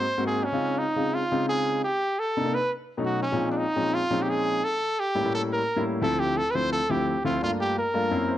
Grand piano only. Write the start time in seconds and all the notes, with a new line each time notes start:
0.18 G#2 A#3 C4 F#4
0.52 C#3 G#3 C4 D#4 F4
0.96 C#3 G#3 C4 D#4 F4
1.31 C#3 G#3 C4 D#4 F4
2.37 C3 A#3 D4 D#4
2.45 C3 A#3 D4 D#4
2.98 B2 F#3 A3 C#4 D#4
3.32 A#2 F3 G#3 C4 C#4 D#4
3.76 A#2 F3 G#3 C4 C#4 D#4
4.10 A#2 F3 G#3 C4 C#4 D#4
5.15 A2 G3 A#3 C#4 E4
5.24 A2 G3 A#3 C#4 E4
5.76 A2 G3 A#3 C#4 E4
6.02 D2 F3 A3 C4 E4
6.55 D2 F3 A3 C4 E4
6.90 D2 F3 A3 C4 E4
7.25 D2 F3 A3 C4 E4
7.42 G2 A3 A#3 D4 F4
7.94 G2 A3 A#3 D4 F4
8.11 F#2 A#3 C4 C#4 E4
8.29 C5